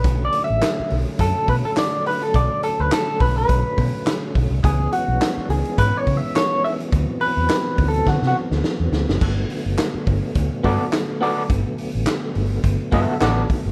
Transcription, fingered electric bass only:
0.05 0.27 B1 loud
0.50 0.60 A1 medium
0.80 muted fingered electric bass stroke soft
0.92 1.04 B1 medium
1.19 1.32 F#2 loud
1.48 1.61 B2 medium
2.34 2.47 B1 loud
2.79 2.89 D2 medium
3.21 3.42 B1 medium
3.50 3.62 B1 medium
3.78 3.90 B2 loud
4.36 4.48 B1 medium
4.51 4.61 C2 medium
4.64 4.86 C#2 loud
5.08 5.18 B1 medium
5.37 muted fingered electric bass stroke soft
5.49 5.61 C#2 medium
5.78 5.90 G#2 loud
6.07 6.19 C#3 loud
6.93 7.05 D2 loud
7.37 7.47 E2 medium
7.79 8.00 D2 medium
8.07 8.19 D3 loud
8.22 8.32 C3 medium
8.51 8.61 D2 loud
8.80 8.89 E2 medium
8.92 9.04 D2 medium
9.09 9.18 F#1 medium
9.22 9.43 G1 loud
9.66 9.75 F#1 medium
9.94 muted fingered electric bass stroke soft
10.07 10.19 G1 loud
10.35 10.48 D2 medium
10.64 10.76 G2 loud
11.50 11.62 G1 loud
11.95 12.04 A1 medium
12.36 12.57 G1 medium
12.64 12.76 G1 medium
12.93 13.05 G2 loud
13.21 13.43 A1 loud
13.66 13.72 G1 medium

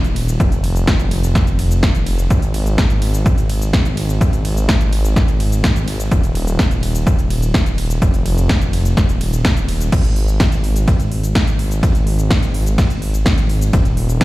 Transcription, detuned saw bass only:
0.00 0.38 D#1 medium
2.31 6.09 G#1 medium
6.12 8.00 D#1 medium
8.02 8.95 F1 medium
9.92 13.71 G#1 medium

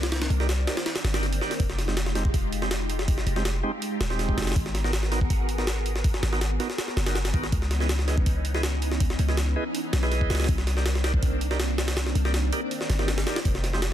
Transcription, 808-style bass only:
0.00 0.29 C2 loud
0.30 0.66 C2 medium
1.04 1.40 G1 loud
1.60 3.25 F1 loud
3.26 3.62 F1 medium
4.00 4.36 D#1 loud
4.37 4.54 F1 loud
4.56 6.21 G#1 loud
6.23 6.58 G#1 medium
6.97 7.32 F#1 medium
7.34 7.51 G#1 loud
7.52 9.18 C#2 loud
9.19 9.55 C#2 medium
9.93 10.29 B1 loud
10.30 10.47 C#2 loud
10.49 12.14 C2 loud
12.15 12.51 C2 medium
12.90 13.25 G1 loud
13.45 13.93 F1 loud

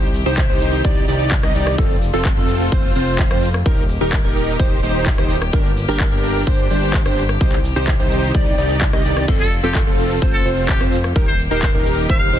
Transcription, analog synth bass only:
0.00 0.24 C2 loud
0.26 0.47 C2 loud
0.49 0.82 C2 loud
0.85 1.06 C2 medium
1.08 1.41 C2 loud
1.43 1.53 C2 medium
1.55 1.76 C2 medium
1.78 2.11 F1 loud
2.13 2.35 F1 loud
2.37 2.70 F1 medium
2.72 2.93 F1 medium
2.95 3.28 F1 loud
3.31 3.63 F2 medium
3.66 3.99 D#1 loud
4.01 4.22 D#1 loud
4.24 4.57 D#1 loud
4.60 4.81 D#1 loud
4.83 5.16 D#1 medium
5.18 5.51 D#1 medium
5.53 5.86 G1 loud
5.88 6.10 G1 loud
6.12 6.45 G1 medium
6.47 6.68 G1 loud
6.71 7.03 G1 medium
7.06 7.38 G1 medium
7.41 7.74 C2 loud
7.76 7.97 C2 medium
7.99 8.32 C2 medium
8.35 8.56 C2 loud
8.58 8.91 C2 loud
8.93 9.03 C2 medium
9.05 9.26 C2 medium
9.28 9.61 F1 loud
9.63 9.85 F1 loud
9.87 10.20 F1 medium
10.22 10.43 F1 medium
10.45 10.78 F1 medium
10.81 11.13 F2 medium
11.16 11.49 D#1 loud
11.51 11.72 D#1 medium
11.74 12.07 D#1 loud
12.10 12.31 D#1 loud
12.33 12.39 D#1 medium

